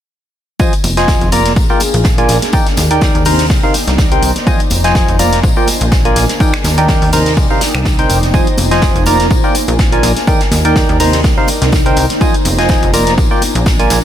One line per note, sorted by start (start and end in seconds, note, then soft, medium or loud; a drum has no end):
0.59 0.73 F3 medium
0.59 0.73 F4 medium
0.59 0.73 C5 medium
0.59 0.73 D#5 medium
0.59 0.73 G#5 medium
0.59 kick loud
0.59 tambourine soft
0.59 tambourine medium
0.73 closed hi-hat soft
0.73 tambourine soft
0.84 1.16 F1 medium
0.84 open hi-hat medium
0.84 tambourine medium
0.84 high conga medium
0.97 1.30 F3 medium
0.97 1.30 F4 medium
0.97 1.30 C5 medium
0.97 1.30 D#5 medium
0.97 1.30 G#5 medium
0.97 snare medium
0.97 closed hi-hat medium
0.97 tambourine soft
1.08 kick loud
1.08 snare loud
1.08 tambourine medium
1.21 1.58 F1 loud
1.21 closed hi-hat soft
1.21 tambourine soft
1.32 1.53 A#3 medium
1.32 2.53 D4 medium
1.32 1.53 F4 medium
1.32 1.53 A#4 medium
1.32 1.53 D5 medium
1.32 1.53 A#5 medium
1.32 open hi-hat medium
1.32 tambourine medium
1.32 high conga medium
1.46 snare soft
1.46 closed hi-hat medium
1.46 tambourine soft
1.56 1.66 A#1 medium
1.56 kick loud
1.56 tambourine medium
1.56 tambourine soft
1.69 1.81 A#3 medium
1.69 1.81 F4 medium
1.69 1.81 A#4 medium
1.69 1.81 D5 medium
1.69 1.81 G5 medium
1.69 tambourine soft
1.80 open hi-hat medium
1.80 tambourine medium
1.80 high conga medium
1.94 2.25 A#1 medium
1.94 closed hi-hat medium
1.94 closed hi-hat soft
1.94 tambourine soft
2.04 kick loud
2.04 snare loud
2.04 tambourine medium
2.04 tambourine soft
2.18 2.38 A#3 medium
2.18 2.38 F4 medium
2.18 2.38 A#4 medium
2.18 2.38 D5 medium
2.18 2.38 G#5 medium
2.18 closed hi-hat soft
2.18 tambourine soft
2.28 2.39 A#1 medium
2.28 snare soft
2.28 open hi-hat loud
2.28 tambourine medium
2.42 snare soft
2.42 closed hi-hat medium
2.42 tambourine soft
2.42 high conga medium
2.53 2.67 D#3 medium
2.53 2.67 D#4 medium
2.53 4.76 D#4 medium
2.53 2.67 A#4 medium
2.53 2.67 D5 medium
2.53 2.67 G5 medium
2.53 kick loud
2.53 tambourine medium
2.53 tambourine soft
2.67 snare soft
2.67 closed hi-hat soft
2.67 tambourine soft
2.77 3.09 D#2 medium
2.77 snare soft
2.77 open hi-hat loud
2.77 tambourine loud
2.77 tambourine medium
2.77 high conga medium
2.90 3.23 D#3 medium
2.90 3.23 D#4 medium
2.90 3.23 A#4 medium
2.90 3.23 D5 medium
2.90 3.23 G5 medium
2.90 closed hi-hat medium
2.90 tambourine soft
3.01 kick loud
3.01 snare loud
3.01 tambourine soft
3.01 tambourine medium
3.15 3.52 D#2 medium
3.15 closed hi-hat soft
3.15 tambourine soft
3.25 3.46 C3 medium
3.25 3.46 D#4 medium
3.25 3.46 A#4 medium
3.25 3.46 C5 medium
3.25 3.46 A#5 medium
3.25 open hi-hat loud
3.25 open hi-hat medium
3.25 tambourine medium
3.25 high conga medium
3.38 4.76 C5 medium
3.38 snare medium
3.38 closed hi-hat medium
3.38 tambourine soft
3.50 3.60 C2 loud
3.50 kick loud
3.50 snare medium
3.50 tambourine medium
3.50 tambourine soft
3.63 3.75 C3 medium
3.63 3.75 D#4 medium
3.63 3.75 A#4 medium
3.63 3.75 C5 medium
3.63 3.75 F5 medium
3.63 tambourine soft
3.74 open hi-hat loud
3.74 tambourine medium
3.74 high conga medium
3.87 4.18 C2 medium
3.87 snare soft
3.87 closed hi-hat medium
3.87 tambourine soft
3.98 kick loud
3.98 snare loud
3.98 tambourine medium
4.11 4.31 C3 medium
4.11 4.31 D#4 medium
4.11 4.31 A#4 medium
4.11 4.31 C5 medium
4.11 4.31 G5 medium
4.11 closed hi-hat soft
4.11 tambourine soft
4.22 4.32 C2 medium
4.22 open hi-hat loud
4.22 tambourine medium
4.36 snare soft
4.36 closed hi-hat medium
4.36 tambourine soft
4.36 high conga medium
4.47 4.60 F3 medium
4.47 4.60 F4 medium
4.47 5.68 F4 medium
4.47 4.60 C5 medium
4.47 4.60 D#5 medium
4.47 4.60 G#5 medium
4.47 kick loud
4.47 tambourine medium
4.47 tambourine soft
4.59 closed hi-hat soft
4.59 tambourine soft
4.70 5.03 F1 loud
4.70 open hi-hat loud
4.70 tambourine medium
4.70 tambourine loud
4.70 high conga medium
4.80 5.17 F3 medium
4.80 5.17 F4 medium
4.80 5.17 C5 medium
4.80 5.17 D#5 medium
4.80 6.40 G#5 medium
4.80 5.17 G#5 medium
4.80 snare medium
4.80 closed hi-hat medium
4.80 tambourine soft
4.95 kick loud
4.95 snare loud
4.95 tambourine medium
5.08 5.45 F1 loud
5.08 closed hi-hat soft
5.08 tambourine soft
5.19 5.40 A#3 medium
5.19 6.40 D4 medium
5.19 5.40 F4 medium
5.19 5.40 A#4 medium
5.19 5.40 D5 medium
5.19 5.40 A#5 medium
5.19 open hi-hat loud
5.19 tambourine medium
5.19 tambourine loud
5.19 high conga medium
5.32 snare soft
5.32 closed hi-hat medium
5.32 tambourine soft
5.43 5.53 A#1 loud
5.43 kick loud
5.43 tambourine soft
5.43 tambourine medium
5.56 5.68 A#3 medium
5.56 5.68 F4 medium
5.56 5.68 A#4 medium
5.56 5.68 D5 medium
5.56 5.68 G5 medium
5.56 tambourine soft
5.67 open hi-hat loud
5.67 tambourine medium
5.67 high conga medium
5.81 6.12 A#1 medium
5.81 closed hi-hat medium
5.81 closed hi-hat soft
5.81 tambourine soft
5.92 kick loud
5.92 snare loud
5.92 tambourine medium
6.05 6.25 A#3 medium
6.05 6.25 F4 medium
6.05 6.25 A#4 medium
6.05 6.25 D5 medium
6.05 6.25 G#5 medium
6.05 closed hi-hat soft
6.05 tambourine soft
6.16 6.26 A#1 loud
6.16 snare soft
6.16 open hi-hat loud
6.16 tambourine medium
6.29 snare soft
6.29 closed hi-hat medium
6.29 tambourine soft
6.29 high conga medium
6.40 6.54 D#3 medium
6.40 8.63 D#4 medium
6.40 6.54 D#4 medium
6.40 6.54 A#4 medium
6.40 6.54 D5 medium
6.40 6.54 G5 medium
6.40 kick loud
6.40 tambourine soft
6.40 tambourine medium
6.54 finger snap medium
6.54 snare soft
6.54 closed hi-hat soft
6.54 tambourine soft
6.64 6.97 D#2 loud
6.64 snare medium
6.64 open hi-hat loud
6.64 tambourine medium
6.64 high conga medium
6.78 7.10 D#3 medium
6.78 7.10 D#4 medium
6.78 7.10 A#4 medium
6.78 7.10 D5 medium
6.78 7.10 G5 medium
6.78 closed hi-hat medium
6.78 tambourine soft
6.88 kick loud
6.88 snare loud
6.88 tambourine medium
6.88 tambourine soft
7.02 7.39 D#2 medium
7.02 open hi-hat medium
7.02 tambourine soft
7.13 7.33 C3 medium
7.13 7.33 D#4 medium
7.13 7.33 A#4 medium
7.13 7.33 C5 medium
7.13 7.33 A#5 medium
7.13 open hi-hat loud
7.13 open hi-hat medium
7.13 tambourine loud
7.13 high conga medium
7.26 snare medium
7.26 closed hi-hat medium
7.26 tambourine soft
7.37 7.47 C2 loud
7.37 8.63 C5 medium
7.37 kick loud
7.37 tambourine medium
7.37 tambourine soft
7.50 7.62 C3 medium
7.50 7.62 D#4 medium
7.50 7.62 A#4 medium
7.50 7.62 C5 medium
7.50 7.62 F5 medium
7.50 tambourine soft
7.61 snare loud
7.61 open hi-hat loud
7.61 tambourine medium
7.61 high conga medium
7.75 8.05 C2 medium
7.75 finger snap medium
7.75 snare soft
7.75 closed hi-hat medium
7.75 tambourine soft
7.85 kick loud
7.85 snare medium
7.85 tambourine medium
7.99 8.18 C3 medium
7.99 8.18 D#4 medium
7.99 8.18 A#4 medium
7.99 8.18 C5 medium
7.99 8.18 G5 medium
7.99 closed hi-hat soft
7.99 tambourine soft
8.10 8.42 F1 medium
8.10 open hi-hat loud
8.10 tambourine medium
8.23 snare soft
8.23 closed hi-hat medium
8.23 tambourine soft
8.23 high conga medium
8.34 8.48 F3 medium
8.34 8.48 F4 medium
8.34 9.55 F4 medium
8.34 8.48 C5 medium
8.34 8.48 D#5 medium
8.34 8.48 G#5 medium
8.34 kick loud
8.34 tambourine medium
8.34 tambourine soft
8.47 closed hi-hat soft
8.47 tambourine soft
8.57 8.90 F1 loud
8.57 open hi-hat loud
8.57 tambourine medium
8.57 high conga medium
8.65 10.27 G#5 medium
8.71 9.04 F3 medium
8.71 9.04 F4 medium
8.71 9.04 C5 medium
8.71 9.04 D#5 medium
8.71 9.04 G#5 medium
8.71 snare medium
8.71 closed hi-hat medium
8.71 tambourine soft
8.82 kick loud
8.82 snare loud
8.82 tambourine soft
8.82 tambourine medium
8.96 9.32 F1 medium
8.96 closed hi-hat soft
8.96 tambourine soft
9.06 9.27 A#3 medium
9.06 10.27 D4 medium
9.06 9.27 F4 medium
9.06 9.27 A#4 medium
9.06 9.27 D5 medium
9.06 9.27 A#5 medium
9.06 open hi-hat loud
9.06 tambourine medium
9.06 high conga medium
9.19 snare soft
9.19 closed hi-hat medium
9.19 tambourine soft
9.26 10.57 A#4 medium
9.30 9.41 A#1 loud
9.30 kick loud
9.30 tambourine soft
9.30 tambourine medium
9.44 9.55 A#3 medium
9.44 9.55 F4 medium
9.44 9.55 A#4 medium
9.44 9.55 D5 medium
9.44 9.55 G5 medium
9.44 tambourine soft
9.55 open hi-hat loud
9.55 tambourine medium
9.55 high conga medium
9.68 9.99 A#1 medium
9.68 closed hi-hat medium
9.68 closed hi-hat soft
9.68 tambourine soft
9.79 kick loud
9.79 snare loud
9.79 tambourine medium
9.79 tambourine soft
9.92 10.12 A#3 medium
9.92 10.12 F4 medium
9.92 10.12 A#4 medium
9.92 10.12 D5 medium
9.92 10.12 G#5 medium
9.92 closed hi-hat soft
9.92 tambourine soft
10.03 10.13 A#1 loud
10.03 snare soft
10.03 open hi-hat loud
10.03 tambourine medium
10.16 snare soft
10.16 closed hi-hat medium
10.16 tambourine soft
10.16 high conga medium
10.27 10.41 D#3 medium
10.27 10.41 D#4 medium
10.27 12.51 D#4 medium
10.27 10.41 A#4 medium
10.27 10.41 D5 medium
10.27 10.41 G5 medium
10.27 kick loud
10.27 tambourine medium
10.27 tambourine soft
10.40 snare soft
10.40 closed hi-hat soft
10.40 tambourine soft
10.51 10.84 D#2 medium
10.51 snare soft
10.51 open hi-hat medium
10.51 tambourine medium
10.51 high conga medium
10.65 10.97 D#3 medium
10.65 10.97 D#4 medium
10.65 10.97 A#4 medium
10.65 10.97 D5 medium
10.65 10.97 G5 medium
10.65 closed hi-hat medium
10.65 tambourine soft
10.76 kick loud
10.76 snare loud
10.76 tambourine medium
10.89 11.26 D#2 loud
10.89 closed hi-hat soft
10.89 tambourine soft
11.00 11.20 C3 medium
11.00 11.20 D#4 medium
11.00 11.20 A#4 medium
11.00 11.20 C5 medium
11.00 11.20 A#5 medium
11.00 open hi-hat medium
11.00 tambourine medium
11.00 high conga medium
11.13 12.51 A#5 medium
11.13 snare medium
11.13 closed hi-hat medium
11.13 tambourine soft
11.21 11.34 C2 loud
11.21 12.51 C5 medium
11.21 kick loud
11.21 snare loud
11.21 tambourine soft
11.21 tambourine medium
11.38 11.49 C3 medium
11.38 11.49 D#4 medium
11.38 11.49 A#4 medium
11.38 11.49 C5 medium
11.38 11.49 F5 medium
11.38 tambourine soft
11.47 open hi-hat medium
11.47 tambourine medium
11.47 high conga medium
11.61 11.92 C2 medium
11.61 snare medium
11.61 closed hi-hat medium
11.61 tambourine soft
11.72 kick loud
11.72 snare loud
11.72 tambourine soft
11.72 tambourine medium
11.85 12.05 C3 medium
11.85 12.05 D#4 medium
11.85 12.05 A#4 medium
11.85 12.05 C5 medium
11.85 12.05 G5 medium
11.85 closed hi-hat soft
11.85 tambourine soft
11.96 12.07 C2 loud
11.96 open hi-hat medium
11.96 tambourine medium
12.09 snare soft
12.09 closed hi-hat medium
12.09 tambourine soft
12.09 high conga soft
12.21 12.35 F3 medium
12.21 13.42 F4 medium
12.21 12.35 F4 medium
12.21 12.35 C5 medium
12.21 12.35 D#5 medium
12.21 12.35 G#5 medium
12.21 kick loud
12.21 tambourine soft
12.21 tambourine medium
12.34 closed hi-hat soft
12.34 tambourine soft
12.45 12.77 F1 loud
12.45 open hi-hat medium
12.45 tambourine medium
12.45 high conga medium
12.55 12.91 F3 medium
12.55 12.91 F4 medium
12.55 12.91 D#5 medium
12.55 14.04 G#5 medium
12.55 12.91 G#5 medium
12.55 closed hi-hat medium
12.55 tambourine soft
12.59 12.91 C5 medium
12.59 snare medium
12.69 kick loud
12.69 snare loud
12.69 tambourine medium
12.83 13.19 F1 loud
12.83 closed hi-hat soft
12.83 tambourine soft
12.93 13.14 A#3 medium
12.93 14.04 D4 medium
12.93 13.14 F4 medium
12.93 13.14 A#4 medium
12.93 13.14 D5 medium
12.93 13.14 A#5 medium
12.93 open hi-hat medium
12.93 tambourine medium
12.93 high conga medium
13.07 snare soft
13.07 closed hi-hat medium
13.07 tambourine soft
13.18 13.28 A#1 medium
13.18 kick loud
13.18 tambourine medium
13.18 tambourine soft
13.31 13.42 A#3 medium
13.31 13.42 F4 medium
13.31 13.42 A#4 medium
13.31 13.42 D5 medium
13.31 13.42 G5 medium
13.31 tambourine soft
13.42 open hi-hat medium
13.42 tambourine medium
13.42 high conga medium
13.55 13.86 A#1 medium
13.55 closed hi-hat medium
13.55 closed hi-hat soft
13.55 tambourine soft
13.66 kick loud
13.66 snare loud
13.66 tambourine soft
13.66 tambourine medium
13.79 13.99 A#3 medium
13.79 13.99 F4 medium
13.79 13.99 A#4 medium
13.79 13.99 D5 medium
13.79 13.99 G#5 medium
13.79 closed hi-hat medium
13.79 tambourine soft
13.90 14.00 A#1 loud
13.90 snare soft
13.90 open hi-hat loud
13.90 tambourine medium